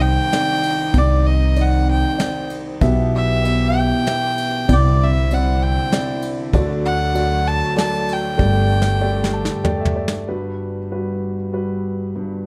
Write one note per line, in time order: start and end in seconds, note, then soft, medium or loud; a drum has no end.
0.00 0.16 C2 medium
0.00 0.91 C2 medium
0.00 0.91 C3 medium
0.00 2.79 D#3 medium
0.00 0.33 C4 medium
0.00 2.79 C4 medium
0.00 0.33 D#4 medium
0.00 2.79 D#4 medium
0.00 0.33 D5 medium
0.00 0.16 D#5 medium
0.00 0.99 G5 loud
0.32 1.23 C4 medium
0.32 1.23 D#4 soft
0.32 1.23 D5 medium
0.32 snare medium
0.32 ride soft
0.63 ride soft
0.94 2.78 C2 medium
0.94 2.02 C2 medium
0.94 2.78 C3 medium
0.94 1.28 D5 medium
0.94 kick medium
0.94 ride soft
1.27 1.63 D#5 medium
1.56 2.02 C4 medium
1.56 2.02 D#4 soft
1.56 2.02 D5 medium
1.56 ride soft
1.61 1.90 F#5 medium
1.91 2.48 G5 medium
2.18 2.82 C4 medium
2.18 2.82 D#4 soft
2.18 2.82 D5 medium
2.18 snare medium
2.18 ride soft
2.50 ride soft
2.81 3.90 B1 medium
2.81 4.66 B1 medium
2.81 4.66 B2 medium
2.81 4.68 E3 medium
2.81 3.32 B3 medium
2.81 4.68 B3 medium
2.81 3.32 G4 medium
2.81 4.68 G4 medium
2.81 3.32 E5 medium
2.81 kick medium
2.81 ride soft
3.16 3.79 E5 medium
3.44 3.90 B3 medium
3.44 3.90 G4 medium
3.44 3.90 E5 medium
3.44 ride soft
3.78 4.74 G5 loud
4.06 4.69 B3 medium
4.06 4.69 G4 medium
4.06 4.70 E5 medium
4.06 snare medium
4.06 ride medium
4.38 ride medium
4.68 6.50 C2 medium
4.68 5.76 C2 medium
4.68 6.50 C3 medium
4.68 8.35 D3 medium
4.68 5.18 C4 medium
4.68 6.52 C4 medium
4.68 5.19 E4 medium
4.68 6.52 E4 medium
4.68 5.19 D5 medium
4.68 kick medium
4.68 ride soft
4.72 5.05 D5 medium
5.03 5.35 E5 medium
5.31 5.76 C4 medium
5.31 5.76 E4 soft
5.31 5.77 D5 medium
5.31 5.64 F#5 medium
5.31 ride soft
5.63 6.24 G5 medium
5.92 6.54 C4 medium
5.92 6.54 E4 medium
5.92 6.53 D5 medium
5.92 snare medium
5.92 ride soft
6.22 ride soft
6.53 7.60 D2 medium
6.53 8.35 D2 medium
6.53 8.35 D3 medium
6.53 8.38 F#3 medium
6.53 7.03 A3 medium
6.53 10.24 A3 medium
6.53 7.04 F#4 medium
6.53 7.04 D5 medium
6.53 kick medium
6.53 ride soft
6.85 7.49 F#5 loud
7.15 7.60 A3 medium
7.15 7.60 F#4 medium
7.15 7.60 D5 medium
7.15 ride soft
7.47 7.77 A5 medium
7.76 8.39 F#3 medium
7.76 8.36 A3 medium
7.76 8.37 D5 medium
7.76 8.14 A5 medium
7.76 snare medium
7.76 ride soft
8.09 9.66 G5 medium
8.09 ride soft
8.37 10.22 G1 medium
8.37 9.48 G1 medium
8.37 10.23 G2 medium
8.37 10.25 D3 medium
8.37 8.88 A3 medium
8.37 8.88 G4 medium
8.37 10.26 G4 medium
8.37 8.89 D5 medium
8.37 kick medium
8.82 snare medium
9.01 9.47 A3 medium
9.01 9.47 G4 medium
9.01 9.47 D5 medium
9.24 snare medium
9.33 9.62 A5 medium
9.45 snare medium
9.64 10.27 A3 medium
9.64 10.27 G4 medium
9.64 9.94 D5 medium
9.64 9.79 G5 medium
9.64 floor tom medium
9.81 9.95 E5 medium
9.85 floor tom medium
9.96 10.25 D5 medium
10.08 snare medium
10.28 12.11 G1 soft
10.28 12.11 G2 soft
10.28 10.78 G3 medium
10.28 10.78 F#4 soft
10.28 10.78 B4 medium
10.91 11.36 G3 soft
10.91 11.36 F#4 soft
10.91 11.36 B4 soft
11.53 12.42 G3 soft
11.53 12.43 F#4 soft
11.53 12.43 B4 medium
12.15 12.46 G1 soft
12.15 12.46 G2 soft